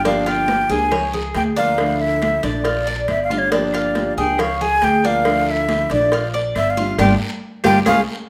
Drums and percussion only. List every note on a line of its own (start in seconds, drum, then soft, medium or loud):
0.05 cowbell loud
0.05 high conga soft
0.05 long guiro medium
0.26 cowbell medium
0.26 high conga soft
0.26 claves medium
0.48 cowbell medium
0.48 high conga loud
0.48 short guiro medium
0.71 short guiro medium
0.91 cowbell loud
0.91 high conga soft
0.91 low conga medium
0.91 long guiro medium
0.91 claves medium
1.14 high conga soft
1.14 low conga medium
1.35 cowbell medium
1.35 high conga medium
1.35 short guiro medium
1.57 short guiro medium
1.78 cowbell loud
1.78 high conga soft
1.78 long guiro medium
1.78 claves medium
2.01 high conga soft
2.22 cowbell medium
2.22 high conga medium
2.22 short guiro medium
2.22 claves medium
2.43 cowbell medium
2.43 high conga soft
2.43 short guiro medium
2.65 cowbell loud
2.65 high conga soft
2.65 long guiro medium
2.87 high conga soft
3.08 cowbell medium
3.08 high conga soft
3.08 short guiro medium
3.08 claves medium
3.30 high conga medium
3.30 short guiro medium
3.52 cowbell loud
3.52 high conga soft
3.52 long guiro medium
3.73 cowbell medium
3.73 high conga soft
3.73 claves medium
3.95 cowbell medium
3.95 high conga medium
3.95 short guiro medium
4.18 short guiro medium
4.38 cowbell loud
4.38 high conga soft
4.38 low conga medium
4.38 long guiro medium
4.38 claves medium
4.61 high conga soft
4.61 low conga medium
4.82 cowbell medium
4.82 high conga medium
4.82 short guiro medium
5.04 high conga soft
5.04 short guiro medium
5.25 cowbell loud
5.25 high conga soft
5.25 long guiro medium
5.25 claves medium
5.48 high conga soft
5.69 cowbell medium
5.69 high conga medium
5.69 short guiro medium
5.69 claves medium
5.90 cowbell medium
5.90 high conga soft
5.90 short guiro medium
6.12 cowbell loud
6.12 high conga soft
6.12 long guiro medium
6.34 high conga soft
6.55 cowbell medium
6.55 high conga soft
6.55 short guiro medium
6.55 claves medium
6.77 high conga medium
6.77 short guiro medium
6.98 cowbell loud
6.98 high conga loud
6.98 long guiro loud
6.98 claves loud
7.64 cowbell loud
7.64 high conga loud
7.64 long guiro loud
7.64 claves loud
7.85 cowbell loud
7.85 high conga medium
7.85 long guiro loud
7.85 claves loud